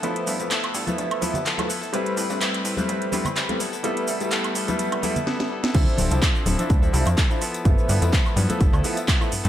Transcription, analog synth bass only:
X:1
M:4/4
L:1/16
Q:"Swing 16ths" 1/4=126
K:Gmix
V:1 name="Analog synth bass" clef=bass
G,,, z G,, F,, z2 G,, z G,,, z2 G,,, z B,,, z2 | A,,, z A,, G,, z2 A,, z A,,,2 G,, C,, z4 | F,, z F,,, C,, z2 F,,, z2 C,, z6 | D,, z D,,, C,, z2 D,,, z D,,2 C,, F,, z4 |
G,,, z G,, F,, z2 G,, z G,,, D,, z4 G,, G,, |]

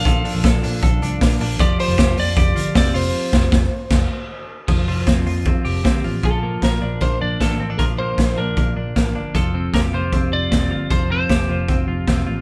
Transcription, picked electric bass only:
X:1
M:4/4
L:1/16
Q:1/4=154
K:F
V:1 name="Picked electric bass" clef=bass
B,,,2 z B,,, B,,,2 B,,2 B,,,2 C,,2 B,,,2 B,,,2 | F,,,2 z F,,, F,,,2 F,,2 F,,,2 G,,,2 F,,,2 F,,,2 | z2 F,,,2 F,,,2 z2 F,,,2 z6 | F,,,2 F,,,2 F,,,2 F,,3 z F,,,2 G,,,2 A,,,2 |
B,,,4 B,,,2 B,,,2 B,,,2 B,,,2 A,,,2 A,,,2 | B,,,4 B,,,2 B,,,2 B,,,2 B,,,2 A,,,2 G,,,2 | F,,,4 F,,,2 F,,,2 F,,,2 F,,,2 E,,,2 G,,,2 | F,,,4 F,,,2 F,,,2 F,,,2 F,,,2 E,,,2 A,,,2 |]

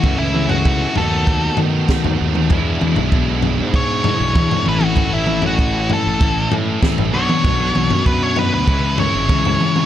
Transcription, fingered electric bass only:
X:1
M:4/4
L:1/16
Q:1/4=97
K:A
V:1 name="Fingered electric bass" clef=bass
C,, C,,4- C,, ^D,,4 ^D,2 z D,, D,,2 | E,,2 E,, B,,,4 G,,4 B,,, E,, z A,,,2- | A,,, A,,,6 A,,,3 A,,2 z A,,, B,,, z | B,,,2 B,,, F,,4 D,, C,,3 G,,, C,,2 z2 |]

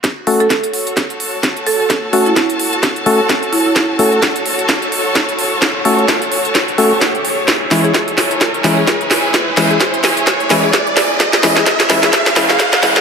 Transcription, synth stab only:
X:1
M:4/4
L:1/8
Q:"Swing 16ths" 1/4=129
K:F#m
V:1 name="Synth stab"
z [A,CFA] z6 | z [A,CFA] z3 [A,CFA] z2 | z [A,CFA] z6 | z [A,CFA] z3 [A,CFA] z2 |
z [E,G,CE] z3 [E,G,CE] z2 | z [E,G,CE] z3 [E,G,CE] z2 | z [E,G,CE] z [E,G,CE] z [E,G,CE] z [E,G,CE] |]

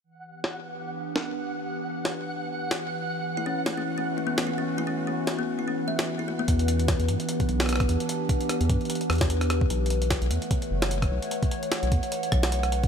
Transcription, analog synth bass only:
X:1
M:4/4
L:1/16
Q:"Swing 16ths" 1/4=149
K:Edor
V:1 name="Analog synth bass" clef=bass
z16 | z16 | z16 | z16 |
E,,4- E,, E,, G,, z3 B,,,4 E,, z | z4 z E,, G,, z3 E,,6 | B,,,4- B,,, B,,, E,, z3 F,,,4 B,,, z | z4 z B,,, E,, z3 B,,,6 |]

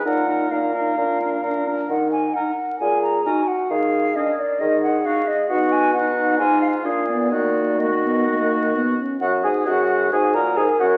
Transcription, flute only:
X:1
M:4/4
L:1/8
Q:1/4=132
K:Ebm
V:1 name="Flute"
g2 f4- f z | g a g2 a b a g | f2 e =d e g f e | ^f a f2 a =f f =d |
=d2 e4 z2 | g a g2 a b a g |]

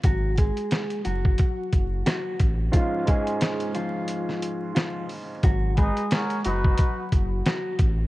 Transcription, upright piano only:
X:1
M:4/4
L:1/8
Q:"Swing 16ths" 1/4=89
K:G#dor
V:1 name="Upright piano"
z8 | [G,,G,CE] [G,,G,CG]3 z4 | z8 |]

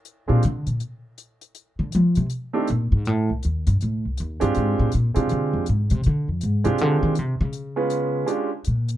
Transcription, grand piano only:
X:1
M:4/4
L:1/8
Q:"Swing" 1/4=160
K:Bb
V:1 name="Grand piano"
z [_A,CDFG] z6 | z4 z [A,CDEG] z2 | z6 z [_A,CDFG]- | [_A,CDFG]2 z [A,CDFG]3 z2 |
z3 [_A,CDFG]3 z2 | z [^G,=B,_DF=B]3 [G,D=DF=G] z3 |]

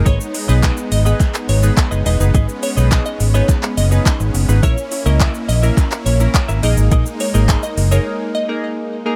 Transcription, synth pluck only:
X:1
M:4/4
L:1/16
Q:1/4=105
K:G#m
V:1 name="Synth pluck"
c2 z d z2 d3 z c z3 d z | z2 c z2 d z c z2 d2 z4 | c2 z d z2 d3 z c z3 d z | z2 c z2 d z c z2 d2 z4 |]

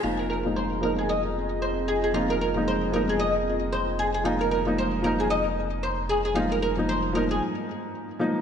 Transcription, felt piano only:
X:1
M:4/4
L:1/16
Q:"Swing 16ths" 1/4=114
K:Fm
V:1 name="Felt piano"
[F,B,E]3 [F,B,E]3 [F,B,E]8- [F,B,E]2 | [F,B,E]3 [F,B,E]3 [F,B,E]8- [F,B,E]2 | [F,B,E]3 [F,B,E]3 [F,B,E]8- [F,B,E]2 | [F,B,E]3 [F,B,E]3 [F,B,E]8 [F,B,E]2 |]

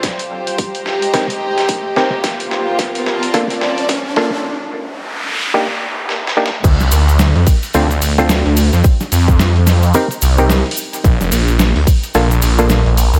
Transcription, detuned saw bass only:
X:1
M:4/4
L:1/16
Q:"Swing 16ths" 1/4=109
K:Dphr
V:1 name="Detuned saw bass" clef=bass
z16 | z16 | z16 | D,, C,, D,,3 F,, z2 D,,2 D,,3 D,,2 F,, |
z2 F,,6 z2 C,,3 z3 | B,,, F,,, B,,,3 D,, z2 B,,,2 B,,,3 B,,,2 D,, |]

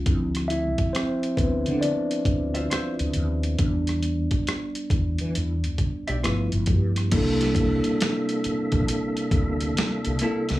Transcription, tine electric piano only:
X:1
M:4/4
L:1/8
Q:"Swing 16ths" 1/4=68
K:Ddor
V:1 name="Tine electric piano"
z [Ee] [Cc] [B,B] [Dd]4- | [Dd]6 z2 | [K:Cmix] [G,B,DEA] z6 z |]
V:2 name="Tine electric piano"
[F,CE] z6 z | [G,B,D]3 z3 [F,A,B,E]2 | [K:Cmix] z8 |]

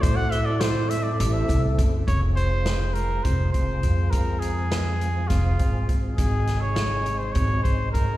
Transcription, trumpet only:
X:1
M:7/8
L:1/16
Q:1/4=102
K:Fphr
V:1 name="Trumpet"
c g =e =d c2 e d2 e2 z3 | d2 c4 B2 c2 c4 | B2 A6 F4 z2 | A3 d4 c d2 c2 B2 |]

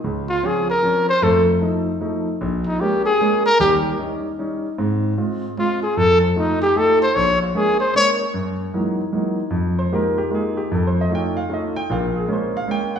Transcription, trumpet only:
X:1
M:3/4
L:1/8
Q:"Swing" 1/4=152
K:Fm
V:1 name="Trumpet"
z F A B2 c | =A z4 z | z E G A2 B | G z4 z |
z4 F A | =A C E G A c | d F A c d z | z6 |
z6 | z6 | z6 |]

